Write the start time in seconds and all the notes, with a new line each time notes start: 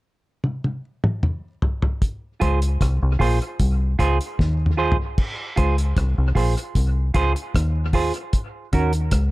0.44 high tom
0.64 high tom
1.04 mid tom
1.23 mid tom
1.62 floor tom
1.82 floor tom
2.02 kick, closed hi-hat
2.40 C#2 F4 G#4 C5, kick, closed hi-hat
2.62 closed hi-hat
2.81 C2, kick, cross-stick, closed hi-hat
3.03 C2
3.19 A#1 F4 G#4 C5, kick, open hi-hat
3.42 closed hi-hat
3.60 C2, kick, closed hi-hat
3.99 C#2 F4 G#4 C5, kick, closed hi-hat
4.21 closed hi-hat
4.39 D#2, kick, snare
4.66 mid tom
4.77 F4 G#4 C5
4.92 floor tom
5.18 kick, crash
5.56 C#2 F4 G#4 C5, kick, closed hi-hat
5.78 closed hi-hat
5.97 C2, kick, cross-stick, closed hi-hat
6.18 C2
6.35 A#1 F4 G#4 C5, kick, open hi-hat
6.57 closed hi-hat
6.75 C2, kick, closed hi-hat
7.14 C#2 F4 G#4 C5, kick, closed hi-hat
7.35 muted clean electric guitar stroke, closed hi-hat
7.55 D#2, kick, cross-stick, closed hi-hat
7.93 F4 G#4 C5, kick, open hi-hat
8.14 closed hi-hat
8.33 kick, closed hi-hat
8.73 D#2 C#4 F#4 A#4, kick, closed hi-hat
8.93 closed hi-hat
9.11 C#2, kick, cross-stick, closed hi-hat